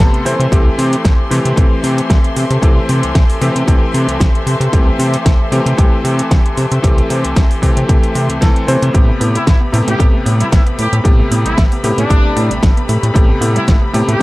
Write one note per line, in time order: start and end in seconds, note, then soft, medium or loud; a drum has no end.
0.00 0.23 C3 medium
0.00 0.22 A3 medium
0.00 0.23 A3 medium
0.00 0.23 B3 medium
0.00 0.22 G4 medium
0.00 0.23 A4 loud
0.00 0.22 B5 medium
0.00 8.90 C6 medium
0.00 snare loud
0.00 closed hi-hat medium
0.14 closed hi-hat soft
0.25 0.35 C3 medium
0.25 0.49 E3 medium
0.25 0.49 A3 medium
0.25 0.49 C4 medium
0.25 8.90 C4 medium
0.25 8.90 A4 medium
0.25 0.49 C5 medium
0.25 8.90 E5 medium
0.25 open hi-hat loud
0.39 0.47 C3 medium
0.39 closed hi-hat medium
0.51 0.69 C2 loud
0.51 1.28 E3 medium
0.51 1.28 A3 medium
0.51 1.28 C4 medium
0.51 1.29 G4 loud
0.51 kick loud
0.51 closed hi-hat medium
0.78 0.96 C3 loud
0.78 open hi-hat loud
0.93 closed hi-hat medium
1.05 1.14 C2 medium
1.05 kick loud
1.05 snare loud
1.05 closed hi-hat medium
1.30 1.40 C3 loud
1.30 1.54 E3 medium
1.30 1.54 A3 medium
1.30 1.55 C4 medium
1.30 1.55 G4 loud
1.30 open hi-hat loud
1.45 1.53 C3 medium
1.45 closed hi-hat medium
1.56 1.66 C2 medium
1.56 2.59 E3 medium
1.56 2.59 A3 medium
1.56 2.60 C4 medium
1.56 2.60 G4 medium
1.56 kick loud
1.56 closed hi-hat medium
1.84 2.01 C3 loud
1.84 open hi-hat loud
1.98 closed hi-hat soft
2.10 2.19 C2 loud
2.10 kick loud
2.10 snare loud
2.10 closed hi-hat medium
2.24 closed hi-hat soft
2.36 2.45 C3 medium
2.36 open hi-hat loud
2.50 2.58 C3 loud
2.50 closed hi-hat soft
2.62 2.80 C2 loud
2.62 3.38 E3 medium
2.62 3.38 A3 medium
2.62 3.39 C4 medium
2.62 3.39 G4 loud
2.62 kick loud
2.62 closed hi-hat medium
2.89 3.03 C3 loud
2.89 open hi-hat loud
3.03 3.13 C2 soft
3.03 closed hi-hat medium
3.15 3.24 C2 medium
3.15 kick loud
3.15 snare loud
3.15 closed hi-hat medium
3.30 open hi-hat medium
3.41 3.50 C3 loud
3.41 3.65 E3 medium
3.41 3.65 A3 medium
3.41 3.65 C4 medium
3.41 3.65 G4 loud
3.41 open hi-hat loud
3.56 3.63 C3 medium
3.56 closed hi-hat medium
3.67 3.77 C2 medium
3.67 4.70 E3 medium
3.67 4.70 A3 medium
3.67 4.71 C4 medium
3.67 4.71 G4 loud
3.67 kick loud
3.67 closed hi-hat medium
3.94 4.07 C3 loud
3.94 open hi-hat loud
4.08 4.18 C2 soft
4.08 closed hi-hat medium
4.20 4.29 C2 loud
4.20 kick loud
4.20 snare loud
4.20 closed hi-hat medium
4.35 closed hi-hat soft
4.46 4.56 C3 medium
4.46 open hi-hat loud
4.60 4.68 C3 loud
4.60 closed hi-hat medium
4.72 4.91 C2 loud
4.72 5.49 E3 medium
4.72 5.49 A3 medium
4.72 5.49 C4 medium
4.72 5.50 G4 loud
4.72 kick loud
4.72 closed hi-hat medium
4.99 5.17 C3 loud
4.99 open hi-hat loud
5.14 closed hi-hat medium
5.26 5.35 C2 medium
5.26 kick loud
5.26 snare loud
5.26 closed hi-hat medium
5.52 5.61 C3 loud
5.52 5.75 E3 medium
5.52 5.75 A3 medium
5.52 5.76 C4 medium
5.52 5.76 G4 loud
5.52 open hi-hat loud
5.66 5.74 C3 medium
5.66 closed hi-hat medium
5.77 5.87 C2 medium
5.77 6.80 E3 medium
5.77 6.80 A3 medium
5.77 6.81 C4 medium
5.77 6.81 G4 loud
5.77 kick loud
5.77 closed hi-hat medium
6.04 6.22 C3 medium
6.04 open hi-hat loud
6.19 closed hi-hat medium
6.31 6.40 C2 loud
6.31 kick loud
6.31 snare loud
6.31 closed hi-hat medium
6.46 closed hi-hat soft
6.57 6.66 C3 medium
6.57 open hi-hat loud
6.72 6.79 C3 loud
6.72 closed hi-hat medium
6.82 7.01 C2 loud
6.82 7.59 E3 medium
6.82 7.60 A3 medium
6.82 7.60 C4 medium
6.82 7.60 G4 loud
6.82 kick loud
6.82 closed hi-hat medium
6.98 closed hi-hat soft
7.10 7.24 C3 loud
7.10 open hi-hat loud
7.25 7.34 C2 soft
7.25 closed hi-hat medium
7.36 7.45 C2 medium
7.36 kick loud
7.36 snare loud
7.36 closed hi-hat medium
7.51 open hi-hat medium
7.62 7.72 C3 loud
7.62 7.86 E3 medium
7.62 7.86 A3 medium
7.62 7.86 C4 medium
7.62 7.86 G4 medium
7.62 kick medium
7.62 open hi-hat loud
7.77 7.85 C3 medium
7.77 closed hi-hat medium
7.88 7.98 C2 medium
7.88 8.39 E3 medium
7.88 8.39 A3 medium
7.88 8.39 C4 medium
7.88 8.39 G4 loud
7.88 kick loud
7.88 closed hi-hat medium
8.03 closed hi-hat soft
8.15 8.29 C3 loud
8.15 open hi-hat loud
8.30 8.39 C2 soft
8.30 closed hi-hat medium
8.41 8.51 C2 medium
8.41 8.65 E3 loud
8.41 8.65 A3 medium
8.41 8.65 C4 medium
8.41 8.65 A4 loud
8.41 kick loud
8.41 snare loud
8.41 closed hi-hat medium
8.56 closed hi-hat soft
8.67 8.77 C3 loud
8.67 8.91 E3 medium
8.67 8.91 A3 medium
8.67 8.91 C4 medium
8.67 8.92 C5 loud
8.67 open hi-hat loud
8.82 8.90 C3 loud
8.82 closed hi-hat medium
8.93 9.12 A1 loud
8.93 9.70 C3 medium
8.93 9.02 G3 medium
8.93 9.70 A3 medium
8.93 14.22 A3 medium
8.93 9.70 B3 medium
8.93 14.22 G4 medium
8.93 9.71 G4 loud
8.93 14.22 B5 medium
8.93 kick loud
8.93 closed hi-hat medium
9.08 9.13 A3 medium
9.21 9.38 A2 loud
9.21 9.24 B3 loud
9.21 open hi-hat loud
9.35 9.42 G3 medium
9.35 9.43 E4 medium
9.35 closed hi-hat medium
9.47 9.56 A1 medium
9.47 9.50 A3 medium
9.47 9.56 E4 medium
9.47 kick loud
9.47 snare loud
9.47 closed hi-hat medium
9.61 9.66 B3 medium
9.72 9.82 A2 loud
9.72 9.96 C3 medium
9.72 9.96 A3 medium
9.72 9.96 B3 medium
9.72 9.79 E4 medium
9.72 9.97 G4 loud
9.72 open hi-hat loud
9.87 9.95 A2 medium
9.87 9.92 A3 medium
9.87 10.04 G4 loud
9.87 closed hi-hat medium
9.98 10.09 A1 medium
9.98 11.01 C3 medium
9.98 10.08 G3 medium
9.98 11.02 A3 medium
9.98 11.02 B3 medium
9.98 11.02 G4 loud
9.98 kick loud
9.98 closed hi-hat medium
10.13 10.18 A3 medium
10.26 10.43 A2 medium
10.26 10.29 B3 loud
10.26 open hi-hat loud
10.40 10.47 G3 medium
10.40 10.48 E4 medium
10.40 closed hi-hat medium
10.52 10.61 A1 loud
10.52 10.55 A3 medium
10.52 10.62 E4 medium
10.52 kick loud
10.52 snare loud
10.52 closed hi-hat medium
10.66 10.71 B3 medium
10.66 closed hi-hat soft
10.79 10.88 A2 medium
10.79 10.84 E4 medium
10.79 10.97 G4 medium
10.79 open hi-hat loud
10.93 11.00 A2 loud
10.93 10.98 A3 medium
10.93 closed hi-hat medium
11.04 11.22 A1 loud
11.04 11.80 C3 medium
11.04 11.13 G3 medium
11.04 11.80 A3 medium
11.04 11.81 B3 medium
11.04 11.81 G4 loud
11.04 kick loud
11.04 closed hi-hat medium
11.19 11.24 A3 medium
11.31 11.45 A2 medium
11.31 11.35 B3 loud
11.31 open hi-hat loud
11.45 11.55 A1 soft
11.45 11.53 G3 medium
11.45 11.62 E4 medium
11.45 closed hi-hat medium
11.58 11.66 A1 medium
11.58 11.61 A3 medium
11.58 kick loud
11.58 snare loud
11.58 closed hi-hat medium
11.72 11.77 B3 medium
11.72 open hi-hat medium
11.83 11.93 A2 loud
11.83 12.07 C3 medium
11.83 12.07 A3 medium
11.83 12.07 B3 medium
11.83 11.89 E4 medium
11.83 12.08 G4 loud
11.83 open hi-hat loud
11.98 12.06 A2 medium
11.98 12.03 A3 medium
11.98 12.51 D4 loud
11.98 closed hi-hat medium
12.09 12.19 A1 medium
12.09 13.12 C3 medium
12.09 12.18 G3 medium
12.09 13.12 A3 medium
12.09 13.12 B3 medium
12.09 13.13 G4 medium
12.09 kick loud
12.09 closed hi-hat medium
12.24 12.29 A3 medium
12.36 12.50 A2 medium
12.36 12.40 B3 loud
12.36 open hi-hat loud
12.50 12.60 A1 soft
12.50 12.57 G3 medium
12.50 closed hi-hat medium
12.63 12.72 A1 loud
12.63 12.66 A3 medium
12.63 kick loud
12.63 snare loud
12.63 closed hi-hat medium
12.77 12.82 B3 medium
12.77 closed hi-hat soft
12.89 12.98 A2 medium
12.89 12.94 E4 medium
12.89 open hi-hat loud
13.03 13.11 A2 loud
13.03 13.08 A3 medium
13.03 closed hi-hat medium
13.14 13.33 A1 loud
13.14 13.91 C3 medium
13.14 13.23 G3 medium
13.14 13.91 A3 medium
13.14 13.91 B3 medium
13.14 13.91 G4 loud
13.14 kick loud
13.14 closed hi-hat medium
13.29 13.34 A3 medium
13.41 13.59 A2 loud
13.41 13.45 B3 loud
13.41 open hi-hat loud
13.55 13.63 G3 medium
13.55 13.64 E4 medium
13.55 closed hi-hat soft
13.68 13.77 A1 medium
13.68 13.71 A3 medium
13.68 13.77 E4 medium
13.68 kick loud
13.68 snare loud
13.68 closed hi-hat medium
13.82 13.87 B3 medium
13.93 14.03 A2 loud
13.93 14.17 C3 medium
13.93 14.17 A3 medium
13.93 14.17 B3 medium
13.93 14.00 E4 medium
13.93 14.18 G4 loud
13.93 open hi-hat loud
14.08 14.16 A2 medium
14.08 14.13 A3 medium
14.08 14.22 G4 loud
14.08 closed hi-hat medium
14.19 14.22 C3 medium